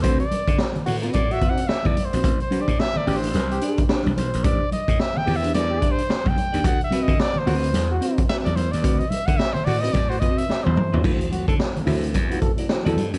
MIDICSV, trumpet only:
0, 0, Header, 1, 2, 480
1, 0, Start_track
1, 0, Tempo, 550459
1, 34, Time_signature, 4, 2, 24, 8
1, 11496, End_track
2, 0, Start_track
2, 0, Title_t, "Trumpet"
2, 0, Program_c, 0, 56
2, 21, Note_on_c, 0, 72, 91
2, 170, Note_off_c, 0, 72, 0
2, 175, Note_on_c, 0, 74, 86
2, 631, Note_off_c, 0, 74, 0
2, 995, Note_on_c, 0, 74, 96
2, 1153, Note_on_c, 0, 76, 97
2, 1166, Note_off_c, 0, 74, 0
2, 1304, Note_on_c, 0, 78, 98
2, 1317, Note_off_c, 0, 76, 0
2, 1462, Note_on_c, 0, 76, 102
2, 1475, Note_off_c, 0, 78, 0
2, 1628, Note_on_c, 0, 74, 91
2, 1641, Note_off_c, 0, 76, 0
2, 1790, Note_on_c, 0, 72, 83
2, 1803, Note_off_c, 0, 74, 0
2, 2102, Note_off_c, 0, 72, 0
2, 2107, Note_on_c, 0, 72, 81
2, 2278, Note_on_c, 0, 74, 93
2, 2291, Note_off_c, 0, 72, 0
2, 2439, Note_on_c, 0, 76, 111
2, 2452, Note_off_c, 0, 74, 0
2, 2592, Note_on_c, 0, 74, 93
2, 2605, Note_off_c, 0, 76, 0
2, 2761, Note_on_c, 0, 72, 89
2, 2774, Note_off_c, 0, 74, 0
2, 3238, Note_off_c, 0, 72, 0
2, 3635, Note_on_c, 0, 72, 79
2, 3869, Note_on_c, 0, 74, 92
2, 3882, Note_off_c, 0, 72, 0
2, 4113, Note_off_c, 0, 74, 0
2, 4121, Note_on_c, 0, 75, 96
2, 4359, Note_on_c, 0, 76, 118
2, 4372, Note_off_c, 0, 75, 0
2, 4512, Note_on_c, 0, 79, 104
2, 4526, Note_off_c, 0, 76, 0
2, 4676, Note_on_c, 0, 76, 102
2, 4689, Note_off_c, 0, 79, 0
2, 4832, Note_off_c, 0, 76, 0
2, 4838, Note_on_c, 0, 74, 99
2, 5155, Note_on_c, 0, 72, 100
2, 5169, Note_off_c, 0, 74, 0
2, 5483, Note_on_c, 0, 79, 100
2, 5496, Note_off_c, 0, 72, 0
2, 5807, Note_on_c, 0, 78, 101
2, 5820, Note_off_c, 0, 79, 0
2, 5958, Note_off_c, 0, 78, 0
2, 5963, Note_on_c, 0, 76, 89
2, 6125, Note_on_c, 0, 75, 82
2, 6139, Note_off_c, 0, 76, 0
2, 6284, Note_on_c, 0, 74, 97
2, 6297, Note_off_c, 0, 75, 0
2, 6440, Note_on_c, 0, 72, 85
2, 6453, Note_off_c, 0, 74, 0
2, 6917, Note_off_c, 0, 72, 0
2, 7230, Note_on_c, 0, 76, 107
2, 7296, Note_off_c, 0, 76, 0
2, 7365, Note_on_c, 0, 74, 92
2, 7461, Note_on_c, 0, 72, 84
2, 7475, Note_off_c, 0, 74, 0
2, 7601, Note_on_c, 0, 74, 79
2, 7614, Note_off_c, 0, 72, 0
2, 7838, Note_on_c, 0, 75, 86
2, 7851, Note_off_c, 0, 74, 0
2, 7936, Note_on_c, 0, 76, 99
2, 7949, Note_off_c, 0, 75, 0
2, 8077, Note_on_c, 0, 78, 97
2, 8090, Note_off_c, 0, 76, 0
2, 8170, Note_on_c, 0, 76, 112
2, 8183, Note_off_c, 0, 78, 0
2, 8311, Note_on_c, 0, 72, 98
2, 8324, Note_off_c, 0, 76, 0
2, 8416, Note_on_c, 0, 74, 98
2, 8429, Note_off_c, 0, 72, 0
2, 8554, Note_on_c, 0, 75, 97
2, 8567, Note_off_c, 0, 74, 0
2, 8656, Note_on_c, 0, 74, 101
2, 8670, Note_off_c, 0, 75, 0
2, 8802, Note_on_c, 0, 72, 90
2, 8815, Note_off_c, 0, 74, 0
2, 8892, Note_on_c, 0, 75, 97
2, 8905, Note_off_c, 0, 72, 0
2, 9050, Note_on_c, 0, 76, 104
2, 9063, Note_off_c, 0, 75, 0
2, 9281, Note_on_c, 0, 72, 84
2, 9294, Note_off_c, 0, 76, 0
2, 9625, Note_off_c, 0, 72, 0
2, 11496, End_track
0, 0, End_of_file